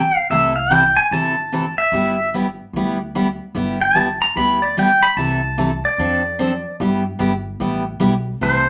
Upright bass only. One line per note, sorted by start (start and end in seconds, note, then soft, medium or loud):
0.00 0.13 G1 medium
0.30 0.95 C2 medium
1.11 1.76 G1 medium
1.92 2.57 G1 medium
2.73 3.38 D2 medium
3.55 4.20 G1 medium
4.36 5.01 D2 medium
5.17 5.82 C2 medium
5.98 6.63 F2 medium
6.80 7.12 G2 loud
7.20 7.54 G1 medium
7.60 7.95 A1 medium
8.01 8.35 B1 loud
8.41 8.69 C2 medium